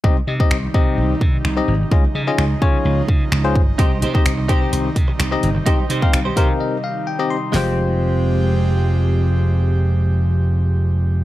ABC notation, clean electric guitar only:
X:1
M:4/4
L:1/16
Q:1/4=128
K:Fm
V:1 name="Clean electric guitar"
z16 | z16 | [EGc]2 [EGc] [EGc] z2 [EGc] [EGc] z8 | [EGc]2 [EGc] [EGc] z [EGc] [EGc]2 z8 |
[A,CG]16- | [A,CG]16 |]